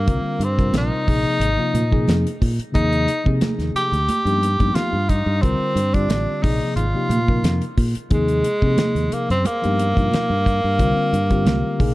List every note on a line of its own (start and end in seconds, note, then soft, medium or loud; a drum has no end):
0.00 0.45 A#3 medium
0.06 0.23 C2 loud
0.06 0.42 D3 medium
0.06 0.42 G3 medium
0.06 0.42 C4 medium
0.06 0.42 F4 medium
0.06 0.43 A#4 medium
0.06 kick loud
0.06 closed hi-hat medium
0.06 muted conga soft
0.24 muted fingered electric bass stroke soft
0.39 0.71 G2 medium
0.39 closed hi-hat medium
0.44 0.76 C4 medium
0.57 1.05 C3 medium
0.57 1.07 G3 medium
0.57 1.08 C4 medium
0.57 1.08 F4 medium
0.57 1.08 A#4 medium
0.57 kick medium
0.57 closed hi-hat soft
0.73 0.89 A#1 medium
0.73 snare loud
0.73 closed hi-hat medium
0.73 muted conga soft
0.73 high conga medium
0.77 2.39 D#4 medium
1.06 1.24 A#1 medium
1.06 1.48 C3 medium
1.06 1.48 F3 medium
1.06 1.48 A#3 medium
1.06 1.48 D#4 medium
1.06 1.49 G#4 medium
1.06 kick medium
1.06 open hi-hat medium
1.40 1.56 G#1 medium
1.40 closed hi-hat medium
1.40 muted conga soft
1.58 1.81 C3 medium
1.58 1.81 F3 medium
1.58 1.81 A#3 medium
1.58 1.81 D#4 medium
1.58 1.82 F4 medium
1.74 2.05 A#2 medium
1.74 closed hi-hat medium
1.74 muted conga soft
1.74 high conga medium
1.90 2.26 C3 medium
1.90 2.27 F3 medium
1.90 2.27 A#3 medium
1.90 2.27 D#4 medium
1.90 2.27 G#4 medium
1.90 kick medium
2.08 2.24 F2 medium
2.08 snare loud
2.08 closed hi-hat medium
2.08 high conga medium
2.27 closed hi-hat soft
2.40 2.58 A#2 medium
2.40 2.49 D#4 soft
2.40 2.50 G#4 soft
2.40 kick medium
2.40 open hi-hat medium
2.59 muted fingered electric bass stroke soft
2.59 closed hi-hat soft
2.72 3.06 D#2 medium
2.72 3.09 C3 medium
2.72 3.09 F3 medium
2.72 3.09 A#3 medium
2.72 3.09 D#4 medium
2.72 3.38 D#4 loud
2.72 3.10 G#4 medium
2.72 kick medium
2.72 closed hi-hat medium
2.72 muted conga soft
2.93 closed hi-hat soft
3.08 closed hi-hat medium
3.24 3.95 C3 medium
3.24 3.40 C3 medium
3.24 3.95 F3 medium
3.24 3.95 A#3 medium
3.24 3.95 D#4 medium
3.24 3.96 G#4 medium
3.24 kick medium
3.41 muted fingered electric bass stroke soft
3.41 snare loud
3.41 closed hi-hat medium
3.41 muted conga soft
3.41 high conga medium
3.59 3.73 D#2 medium
3.59 snare soft
3.59 closed hi-hat soft
3.75 4.76 G4 medium
3.75 muted fingered electric bass stroke soft
3.75 closed hi-hat medium
3.92 4.07 D2 medium
3.92 closed hi-hat soft
4.08 muted fingered electric bass stroke soft
4.08 closed hi-hat medium
4.08 muted conga soft
4.08 high conga medium
4.25 4.56 G2 medium
4.25 4.49 F3 medium
4.25 4.49 A#3 medium
4.25 4.49 B3 medium
4.25 4.49 D#4 medium
4.25 4.50 G4 medium
4.25 closed hi-hat soft
4.42 closed hi-hat medium
4.42 muted conga soft
4.59 4.74 G2 medium
4.59 4.94 F3 medium
4.59 4.95 A#3 medium
4.59 4.95 B3 medium
4.59 4.95 D#4 medium
4.59 4.95 G4 medium
4.59 kick medium
4.59 closed hi-hat soft
4.75 5.11 F4 medium
4.75 muted fingered electric bass stroke soft
4.75 snare medium
4.75 closed hi-hat medium
4.75 high conga medium
4.93 5.24 G2 medium
5.09 5.18 D#4 soft
5.09 5.43 D#4 medium
5.09 5.19 F4 soft
5.09 kick medium
5.09 closed hi-hat medium
5.26 5.41 G2 medium
5.42 5.59 C2 medium
5.42 5.78 D3 medium
5.42 5.78 G3 medium
5.42 5.95 C4 medium
5.42 5.78 C4 medium
5.42 5.78 F4 medium
5.42 5.79 A#4 medium
5.42 kick medium
5.42 closed hi-hat medium
5.42 muted conga soft
5.75 6.06 G2 medium
5.75 closed hi-hat medium
5.94 6.43 D3 medium
5.94 6.44 G3 medium
5.94 6.44 C4 medium
5.94 6.44 D4 medium
5.94 6.44 F4 medium
5.94 6.44 G4 medium
5.94 kick medium
5.94 closed hi-hat soft
6.09 6.25 A1 medium
6.09 snare medium
6.09 closed hi-hat medium
6.09 muted conga soft
6.09 high conga medium
6.42 6.60 A#1 medium
6.42 6.83 C3 medium
6.42 6.84 F3 medium
6.42 6.84 A#3 medium
6.42 6.75 D#4 medium
6.42 6.84 D#4 medium
6.42 6.84 G#4 medium
6.42 kick medium
6.42 open hi-hat medium
6.76 6.92 G#1 medium
6.76 7.73 F4 medium
6.76 closed hi-hat medium
6.76 muted conga soft
6.94 7.17 C3 medium
6.94 7.17 F3 medium
6.94 7.17 A#3 medium
6.94 7.18 D#4 medium
6.94 7.18 G4 medium
7.09 7.40 A#2 medium
7.09 closed hi-hat medium
7.09 muted conga soft
7.09 high conga medium
7.28 7.63 C3 medium
7.28 7.63 F3 medium
7.28 7.63 A#3 medium
7.28 7.64 D#4 medium
7.28 7.64 A#4 medium
7.28 kick medium
7.43 7.60 F2 medium
7.43 snare medium
7.43 closed hi-hat medium
7.43 high conga medium
7.62 closed hi-hat soft
7.77 7.94 A#2 medium
7.77 7.86 D#4 soft
7.77 7.87 G#4 soft
7.77 kick medium
7.77 open hi-hat medium
7.95 muted fingered electric bass stroke soft
7.95 closed hi-hat soft
8.10 8.41 D#2 medium
8.10 8.46 C3 medium
8.10 8.46 F3 medium
8.10 9.15 G#3 medium
8.10 8.46 A#3 medium
8.10 8.46 D#4 medium
8.10 8.47 G#4 medium
8.10 kick loud
8.10 closed hi-hat medium
8.10 muted conga soft
8.28 closed hi-hat soft
8.44 closed hi-hat medium
8.62 8.77 C3 medium
8.62 9.32 C3 medium
8.62 9.32 F3 medium
8.62 9.33 A#3 medium
8.62 9.33 D#4 medium
8.62 9.33 G#4 medium
8.62 kick medium
8.77 muted fingered electric bass stroke soft
8.77 snare loud
8.77 closed hi-hat medium
8.77 muted conga soft
8.77 high conga medium
8.95 9.10 D#2 medium
8.95 closed hi-hat soft
9.12 9.30 A#3 medium
9.12 muted fingered electric bass stroke soft
9.12 closed hi-hat medium
9.30 9.44 F#2 medium
9.30 9.48 C4 medium
9.30 closed hi-hat soft
9.45 11.94 A#3 medium
9.45 muted fingered electric bass stroke soft
9.45 closed hi-hat medium
9.45 muted conga soft
9.45 high conga medium
9.62 9.95 G2 medium
9.62 9.85 F3 medium
9.62 9.86 A#3 medium
9.62 9.86 B3 medium
9.62 9.86 D#4 medium
9.62 9.86 G4 medium
9.62 closed hi-hat soft
9.78 closed hi-hat medium
9.78 muted conga soft
9.94 10.11 G2 medium
9.94 10.31 B2 medium
9.94 10.30 F3 medium
9.94 10.31 A#3 medium
9.94 10.31 D#4 medium
9.94 10.32 F4 medium
9.94 kick medium
9.94 closed hi-hat soft
10.11 muted fingered electric bass stroke soft
10.11 snare medium
10.11 closed hi-hat medium
10.11 high conga medium
10.30 10.61 G2 medium
10.45 10.54 D#4 soft
10.45 10.55 G4 soft
10.45 kick medium
10.45 closed hi-hat soft
10.64 10.78 G2 medium
10.78 10.96 C2 medium
10.78 11.14 D3 loud
10.78 11.15 G3 medium
10.78 11.15 C4 medium
10.78 11.15 F4 medium
10.78 11.15 A#4 loud
10.78 kick medium
10.78 closed hi-hat medium
10.78 muted conga soft
11.13 11.44 G2 medium
11.13 closed hi-hat medium
11.30 11.80 D3 medium
11.30 11.80 G3 medium
11.30 11.80 C4 medium
11.30 11.80 F4 medium
11.30 11.80 G4 medium
11.30 kick medium
11.30 closed hi-hat soft
11.45 11.62 C2 medium
11.45 snare medium
11.45 closed hi-hat medium
11.45 muted conga soft
11.45 high conga medium
11.45 low conga medium
11.78 11.94 A#1 medium
11.78 11.94 C3 medium
11.78 11.94 F3 medium
11.78 11.94 A#3 medium
11.78 11.94 D#4 medium
11.78 11.94 G#4 medium
11.78 kick loud
11.78 open hi-hat medium